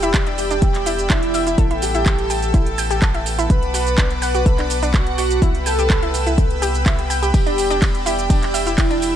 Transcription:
Already playing: sub bass E1, synth texture B3 B5, soft synth lead G4, digital synth lead G4, supersaw synth D5 G5 B5 E6
0.03 synth arpeggio sound E4, closed hi-hat, shaker
0.14 synth arpeggio sound G4, kick, clap, closed hi-hat, shaker
0.27 synth arpeggio sound D4, closed hi-hat
0.38 digital synth lead G4, soft synth lead G4, open hi-hat, shaker
0.51 synth arpeggio sound D4, closed hi-hat, shaker
0.62 kick, closed hi-hat, shaker
0.75 clap, closed hi-hat
0.86 synth arpeggio sound E4, open hi-hat, shaker
0.99 closed hi-hat, shaker
1.10 synth arpeggio sound D4, digital synth lead E4, soft synth lead E4, kick, clap, closed hi-hat, shaker
1.23 closed hi-hat
1.34 synth arpeggio sound E5, open hi-hat, shaker
1.47 synth arpeggio sound E4, closed hi-hat, shaker
1.58 sub bass A1, synth arpeggio sound A4, supersaw synth A4 A5 E6, kick, closed hi-hat, shaker
1.71 synth arpeggio sound E4, closed hi-hat
1.82 digital synth lead G4, soft synth lead G4, open hi-hat, shaker
1.95 synth arpeggio sound E4, closed hi-hat, shaker
2.06 kick, clap, closed hi-hat, shaker
2.19 closed hi-hat
2.30 synth arpeggio sound G4, open hi-hat, shaker
2.42 closed hi-hat, shaker
2.54 synth arpeggio sound E4, kick, closed hi-hat, shaker
2.66 closed hi-hat
2.78 synth arpeggio sound G5, open hi-hat, shaker
2.91 synth arpeggio sound G4, closed hi-hat, shaker
3.02 synth arpeggio sound A4, kick, clap, closed hi-hat, shaker
3.15 synth arpeggio sound E4, closed hi-hat
3.26 open hi-hat, shaker
3.39 synth arpeggio sound E4, closed hi-hat, shaker
3.50 sub bass B1, soft synth lead B4, digital synth lead B4, supersaw synth B4 F#5 D6, kick, closed hi-hat, shaker
3.63 closed hi-hat
3.74 synth arpeggio sound F#4, open hi-hat, shaker
3.87 closed hi-hat, shaker
3.98 synth arpeggio sound D4, kick, clap, closed hi-hat, shaker
4.10 closed hi-hat
4.22 digital synth lead B4, soft synth lead B4, synth arpeggio sound F#5, open hi-hat, shaker
4.34 synth arpeggio sound F#4, closed hi-hat, shaker
4.46 synth arpeggio sound A4, kick, closed hi-hat, shaker
4.59 synth arpeggio sound D4, clap, closed hi-hat
4.70 open hi-hat, shaker
4.83 synth arpeggio sound D4, closed hi-hat, shaker
4.94 digital synth lead F#4, soft synth lead F#4, kick, clap, closed hi-hat, shaker
5.07 closed hi-hat
5.18 synth arpeggio sound F#4, open hi-hat, shaker
5.31 closed hi-hat, shaker
5.42 sub bass C2, synth arpeggio sound E4, supersaw synth B4 G5 B5 E6, kick, closed hi-hat, shaker
5.55 closed hi-hat
5.66 digital synth lead A4, soft synth lead A4, synth arpeggio sound G5, open hi-hat, shaker
5.79 synth arpeggio sound G4, closed hi-hat, shaker
5.90 synth arpeggio sound B4, kick, clap, closed hi-hat, shaker
6.02 synth arpeggio sound E4, closed hi-hat
6.14 open hi-hat, shaker
6.27 synth arpeggio sound E4, closed hi-hat, shaker
6.38 kick, closed hi-hat, shaker
6.51 closed hi-hat
6.62 synth arpeggio sound G4, open hi-hat, shaker
6.75 closed hi-hat, shaker
6.86 synth arpeggio sound E4, kick, clap, closed hi-hat, shaker
6.99 closed hi-hat
7.10 synth arpeggio sound G5, open hi-hat, shaker
7.23 synth arpeggio sound G4, closed hi-hat, shaker
7.34 sub bass E1, synth arpeggio sound G4, soft synth lead G4, digital synth lead G4, supersaw synth D5 E6, kick, closed hi-hat, ride, shaker
7.46 synth arpeggio sound D4, closed hi-hat
7.58 open hi-hat, shaker
7.70 synth arpeggio sound D4, closed hi-hat, shaker
7.82 kick, clap, closed hi-hat, ride, shaker
7.95 closed hi-hat
8.06 synth arpeggio sound E4, soft synth lead G4, digital synth lead G4, open hi-hat, shaker
8.19 closed hi-hat, shaker
8.30 synth arpeggio sound D4, kick, closed hi-hat, ride, shaker
8.43 clap, closed hi-hat
8.54 synth arpeggio sound E5, open hi-hat, shaker
8.67 synth arpeggio sound E4, closed hi-hat, shaker
8.78 soft synth lead E4, digital synth lead E4, synth arpeggio sound G4, kick, clap, closed hi-hat, ride, shaker
8.91 synth arpeggio sound D4, closed hi-hat
9.02 open hi-hat, shaker

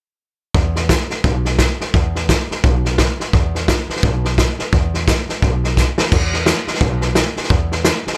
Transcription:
0.54 upright bass E2, kick, snare
0.76 snare
0.89 kick, snare, hi-hat pedal
1.10 muted upright bass stroke, snare
1.24 upright bass B1, kick, snare
1.45 snare
1.59 kick, snare, hi-hat pedal
1.80 muted upright bass stroke, snare
1.94 upright bass E2, kick, snare
2.15 snare
2.29 kick, snare, hi-hat pedal
2.50 muted upright bass stroke, snare
2.64 upright bass B1, kick, snare
2.85 snare
2.98 kick, snare, hi-hat pedal
3.20 muted upright bass stroke, snare
3.33 upright bass E2, kick, snare
3.55 snare
3.68 kick, snare, hi-hat pedal
3.89 muted upright bass stroke, snare
3.96 snare
4.03 upright bass B1, kick, snare
4.25 snare
4.38 kick, snare, hi-hat pedal
4.59 muted upright bass stroke, snare
4.72 upright bass E2, kick, snare
4.94 snare
5.08 kick, snare, hi-hat pedal
5.29 muted upright bass stroke, snare
5.42 upright bass B1, kick, snare
5.64 snare
5.77 kick, snare, hi-hat pedal
5.98 muted upright bass stroke, snare
6.12 upright bass E2, kick, snare, crash
6.33 snare
6.46 snare, hi-hat pedal
6.67 muted upright bass stroke, snare
6.74 snare
6.81 upright bass B1, kick, snare
7.01 snare
7.15 snare, hi-hat pedal
7.36 muted upright bass stroke, snare
7.43 snare
7.50 upright bass E2, kick, snare
7.72 snare
7.85 snare, hi-hat pedal
8.07 muted upright bass stroke, snare
8.13 snare

